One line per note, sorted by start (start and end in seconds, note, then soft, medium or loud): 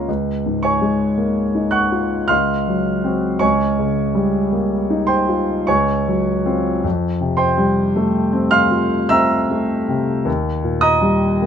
0.00 0.10 F4 soft
0.00 0.10 A#4 soft
0.00 0.11 A#5 medium
0.08 2.27 C#2 soft
0.46 1.05 G#2 soft
0.63 1.72 C#5 soft
0.63 1.71 G#5 soft
0.63 1.70 C#6 medium
0.81 1.41 G#3 soft
1.18 1.78 A#3 soft
1.55 2.15 D#4 soft
1.71 2.26 F#5 medium
1.71 2.26 C#6 medium
1.71 2.29 F#6 medium
1.92 2.30 F4 soft
2.28 3.38 C#2 soft
2.28 3.37 F5 soft
2.28 3.37 C6 soft
2.28 3.41 F6 medium
2.68 3.28 F#3 soft
3.04 3.38 C4 soft
3.04 3.38 F#4 soft
3.39 5.63 C#2 soft
3.39 5.05 C#5 soft
3.39 5.05 G#5 medium
3.39 5.08 C#6 medium
3.79 4.38 C#3 soft
4.15 4.75 G3 soft
4.52 5.13 A#3 soft
4.90 5.52 D#4 soft
5.07 5.63 C5 medium
5.07 5.63 G5 soft
5.07 5.66 C6 medium
5.29 5.68 F4 soft
5.67 6.82 C#2 medium
5.67 6.81 C#5 medium
5.67 6.81 G#5 soft
5.67 6.84 C#6 medium
6.08 6.70 F#3 soft
6.46 6.80 C4 soft
6.46 6.81 F4 soft
6.84 10.22 F2 medium
7.21 7.81 C3 soft
7.37 8.48 C5 medium
7.37 8.47 G5 medium
7.37 8.50 C6 medium
7.58 8.18 G3 soft
7.96 8.57 A3 soft
8.33 8.95 C4 soft
8.51 9.06 F5 medium
8.51 9.07 C6 medium
8.51 9.10 F6 medium
8.71 9.34 F4 soft
9.09 9.73 C4 soft
9.09 10.22 E5 medium
9.09 10.22 A#5 medium
9.09 10.26 E6 medium
9.50 10.12 A3 soft
9.88 10.26 C3 soft
10.25 11.46 D#2 medium
10.64 11.25 A#2 soft
10.81 11.46 D#5 medium
10.81 11.46 A#5 medium
10.81 11.46 D#6 medium
11.02 11.46 G3 soft
11.42 11.46 A#3 soft